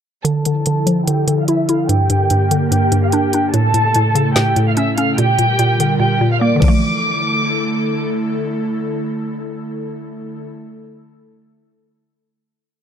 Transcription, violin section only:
0.25 1.04 A4 medium
0.25 1.03 A5 medium
1.07 1.37 G4 medium
1.07 1.37 G5 medium
1.39 1.47 F5 medium
1.39 1.48 F6 medium
1.48 1.66 E5 medium
1.48 1.67 E6 medium
1.69 1.87 F5 medium
1.69 1.87 F6 medium
1.89 2.68 G4 medium
1.89 2.68 G5 loud
2.71 3.01 G4 medium
2.71 3.01 G5 medium
3.03 3.11 F5 medium
3.03 3.12 F6 medium
3.13 3.52 G4 medium
3.13 3.51 G5 medium
3.54 4.32 A4 medium
3.54 4.32 A5 loud
4.36 4.66 G4 medium
4.36 4.65 G5 medium
4.67 4.76 F5 medium
4.67 4.76 F6 medium
4.77 4.95 E5 medium
4.77 4.95 E6 medium
4.98 5.15 F5 medium
4.98 5.16 F6 medium
5.18 5.97 G4 medium
5.18 5.96 G5 loud
6.00 6.30 G4 medium
6.00 6.30 G5 medium
6.32 6.40 F5 medium
6.32 6.41 F6 medium
6.41 6.61 D5 medium
6.41 6.61 D6 medium
6.62 8.02 D6 medium

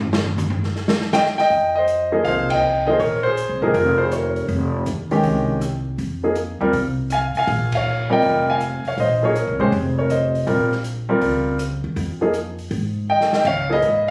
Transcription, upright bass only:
1.50 2.21 F2 medium
2.25 2.96 C2 medium
2.99 3.46 A#1 medium
3.49 3.61 C2 medium
3.62 3.74 G#1 medium
3.74 4.45 F1 medium
4.48 4.84 F1 medium
4.87 5.22 D#2 medium
5.24 5.95 C2 medium
5.98 6.57 F2 medium
6.61 6.72 D#2 medium
6.73 7.32 C2 medium
7.35 muted upright bass stroke soft
7.47 8.19 A#1 medium
8.22 8.81 F1 medium
8.85 muted upright bass stroke soft
8.97 9.44 A#1 medium
9.47 9.59 C2 medium
9.60 9.71 G#1 medium
9.72 10.43 F1 medium
10.47 11.18 A#1 medium
11.22 11.80 C#2 medium
11.84 11.95 D#2 medium
11.96 12.67 F2 medium
12.71 13.42 G#2 medium
13.45 13.80 C#2 medium
13.81 14.10 G#2 medium

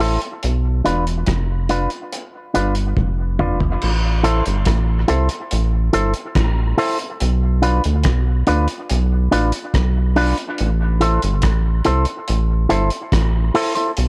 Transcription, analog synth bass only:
0.00 0.18 A1 medium
0.44 0.82 B1 loud
0.86 1.24 E1 medium
1.28 1.88 F1 medium
2.56 2.94 G1 medium
2.97 3.78 F1 loud
3.84 4.42 A1 loud
4.47 4.65 G1 loud
4.67 5.05 A1 loud
5.10 5.29 C2 medium
5.53 5.90 A1 loud
5.95 6.14 G1 loud
6.36 6.74 A1 medium
7.22 7.81 B1 loud
7.86 8.04 D2 medium
8.06 8.44 B1 medium
8.49 8.67 D2 medium
8.91 9.29 B1 loud
9.33 9.52 A1 medium
9.75 10.34 B1 loud
10.61 11.19 A1 loud
11.24 11.42 G1 loud
11.44 11.82 A1 medium
11.88 12.06 C2 medium
12.30 12.67 A1 loud
12.72 12.90 G1 loud
13.13 13.51 A1 medium
13.98 14.08 B1 loud

